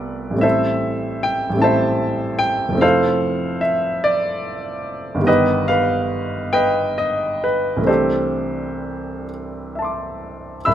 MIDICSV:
0, 0, Header, 1, 2, 480
1, 0, Start_track
1, 0, Key_signature, 0, "major"
1, 0, Tempo, 804290
1, 264, Time_signature, 6, 3, 24, 8
1, 2655, Tempo, 832178
1, 3615, Tempo, 886263
1, 4575, Tempo, 924499
1, 6059, End_track
2, 0, Start_track
2, 0, Title_t, "Grand piano"
2, 0, Program_c, 0, 0
2, 0, Control_c, 0, 64, 127
2, 0, Note_on_c, 0, 36, 28
2, 0, Note_on_c, 0, 55, 25
2, 0, Note_on_c, 0, 57, 22
2, 0, Note_on_c, 0, 59, 21
2, 0, Note_on_c, 0, 65, 24
2, 0, Note_on_c, 0, 69, 39
2, 0, Note_on_c, 0, 71, 35
2, 0, Note_on_c, 0, 74, 49
2, 181, Note_on_c, 0, 33, 29
2, 187, Note_off_c, 0, 55, 0
2, 195, Note_off_c, 0, 36, 0
2, 196, Note_on_c, 0, 55, 24
2, 202, Note_off_c, 0, 57, 0
2, 211, Note_on_c, 0, 57, 24
2, 221, Note_off_c, 0, 59, 0
2, 229, Note_off_c, 0, 65, 0
2, 229, Note_on_c, 0, 60, 25
2, 230, Note_off_c, 0, 71, 0
2, 233, Note_off_c, 0, 69, 0
2, 246, Note_on_c, 0, 64, 25
2, 246, Note_on_c, 0, 76, 60
2, 255, Note_off_c, 0, 74, 0
2, 256, Note_on_c, 0, 72, 43
2, 258, Note_on_c, 0, 69, 43
2, 273, Control_c, 0, 64, 0
2, 367, Control_c, 0, 64, 127
2, 718, Note_off_c, 0, 72, 0
2, 719, Note_off_c, 0, 69, 0
2, 735, Note_on_c, 0, 79, 62
2, 737, Note_off_c, 0, 76, 0
2, 884, Note_off_c, 0, 33, 0
2, 893, Note_on_c, 0, 33, 35
2, 906, Note_off_c, 0, 55, 0
2, 915, Note_on_c, 0, 55, 27
2, 927, Note_off_c, 0, 57, 0
2, 936, Note_on_c, 0, 57, 23
2, 937, Note_off_c, 0, 60, 0
2, 946, Note_on_c, 0, 60, 25
2, 950, Note_off_c, 0, 64, 0
2, 960, Note_on_c, 0, 64, 29
2, 965, Note_on_c, 0, 81, 60
2, 976, Note_off_c, 0, 79, 0
2, 977, Note_on_c, 0, 72, 45
2, 978, Note_on_c, 0, 76, 50
2, 1424, Note_on_c, 0, 79, 73
2, 1425, Note_off_c, 0, 72, 0
2, 1426, Note_off_c, 0, 76, 0
2, 1443, Note_off_c, 0, 81, 0
2, 1605, Note_on_c, 0, 29, 33
2, 1623, Note_off_c, 0, 33, 0
2, 1625, Note_on_c, 0, 53, 27
2, 1629, Note_off_c, 0, 57, 0
2, 1634, Note_off_c, 0, 55, 0
2, 1638, Note_on_c, 0, 57, 30
2, 1646, Note_off_c, 0, 60, 0
2, 1655, Note_on_c, 0, 60, 28
2, 1657, Note_off_c, 0, 64, 0
2, 1675, Note_on_c, 0, 64, 27
2, 1676, Note_off_c, 0, 79, 0
2, 1678, Note_on_c, 0, 77, 65
2, 1682, Note_on_c, 0, 69, 57
2, 1684, Note_on_c, 0, 72, 54
2, 1698, Control_c, 0, 64, 0
2, 1794, Control_c, 0, 64, 127
2, 2143, Note_off_c, 0, 69, 0
2, 2144, Note_off_c, 0, 72, 0
2, 2155, Note_on_c, 0, 76, 60
2, 2165, Note_off_c, 0, 77, 0
2, 2405, Note_off_c, 0, 76, 0
2, 2410, Note_on_c, 0, 74, 73
2, 3058, Note_on_c, 0, 31, 41
2, 3065, Note_off_c, 0, 29, 0
2, 3070, Note_on_c, 0, 51, 28
2, 3075, Note_off_c, 0, 53, 0
2, 3081, Note_off_c, 0, 57, 0
2, 3089, Note_off_c, 0, 60, 0
2, 3094, Note_on_c, 0, 55, 34
2, 3099, Note_off_c, 0, 64, 0
2, 3108, Note_on_c, 0, 59, 29
2, 3121, Note_on_c, 0, 63, 31
2, 3127, Note_on_c, 0, 75, 66
2, 3128, Note_off_c, 0, 74, 0
2, 3133, Note_on_c, 0, 67, 51
2, 3133, Note_on_c, 0, 71, 56
2, 3140, Control_c, 0, 64, 0
2, 3226, Control_c, 0, 64, 127
2, 3355, Note_off_c, 0, 67, 0
2, 3355, Note_off_c, 0, 71, 0
2, 3365, Note_on_c, 0, 77, 68
2, 3369, Note_off_c, 0, 75, 0
2, 3374, Note_on_c, 0, 71, 48
2, 3829, Note_off_c, 0, 71, 0
2, 3839, Note_on_c, 0, 79, 71
2, 3843, Note_on_c, 0, 71, 52
2, 3847, Note_off_c, 0, 77, 0
2, 3847, Note_on_c, 0, 75, 50
2, 4067, Note_off_c, 0, 71, 0
2, 4069, Note_off_c, 0, 75, 0
2, 4081, Note_off_c, 0, 79, 0
2, 4084, Note_on_c, 0, 75, 59
2, 4325, Note_off_c, 0, 75, 0
2, 4332, Note_on_c, 0, 71, 54
2, 4510, Note_on_c, 0, 36, 34
2, 4517, Note_on_c, 0, 52, 26
2, 4519, Note_off_c, 0, 31, 0
2, 4525, Note_off_c, 0, 51, 0
2, 4534, Note_on_c, 0, 57, 24
2, 4536, Note_off_c, 0, 55, 0
2, 4543, Note_off_c, 0, 59, 0
2, 4548, Note_off_c, 0, 63, 0
2, 4553, Note_on_c, 0, 60, 25
2, 4566, Note_on_c, 0, 62, 24
2, 4567, Note_on_c, 0, 72, 47
2, 4577, Note_off_c, 0, 71, 0
2, 4577, Note_on_c, 0, 69, 38
2, 4578, Note_on_c, 0, 67, 39
2, 4582, Control_c, 0, 64, 0
2, 4675, Control_c, 0, 64, 127
2, 5283, Note_off_c, 0, 67, 0
2, 5283, Note_off_c, 0, 69, 0
2, 5299, Note_off_c, 0, 72, 0
2, 5545, Note_on_c, 0, 76, 22
2, 5563, Note_on_c, 0, 81, 20
2, 5581, Note_on_c, 0, 84, 22
2, 5592, Note_on_c, 0, 86, 23
2, 5965, Note_off_c, 0, 36, 0
2, 5969, Note_off_c, 0, 52, 0
2, 5977, Note_off_c, 0, 57, 0
2, 5986, Note_off_c, 0, 60, 0
2, 5992, Note_off_c, 0, 62, 0
2, 5998, Note_off_c, 0, 76, 0
2, 6007, Note_off_c, 0, 81, 0
2, 6011, Note_on_c, 0, 88, 56
2, 6015, Note_on_c, 0, 83, 46
2, 6017, Note_off_c, 0, 84, 0
2, 6018, Note_on_c, 0, 76, 47
2, 6022, Note_off_c, 0, 86, 0
2, 6023, Note_on_c, 0, 36, 39
2, 6026, Control_c, 0, 64, 0
2, 6059, Note_off_c, 0, 36, 0
2, 6059, Note_off_c, 0, 76, 0
2, 6059, Note_off_c, 0, 83, 0
2, 6059, Note_off_c, 0, 88, 0
2, 6059, End_track
0, 0, End_of_file